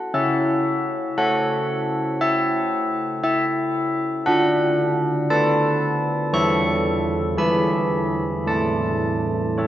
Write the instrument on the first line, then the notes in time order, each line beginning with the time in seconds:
church bells
0.14 C#4 E5
1.18 A4 C#5 F#5
2.21 E5
3.23 E5
4.26 D4 F#5
5.30 A4 B4 A5
6.33 E3 A4 E5 C#6
7.37 E3 G#4 E5 B5
8.47 A3 A5
9.58 C#5 E5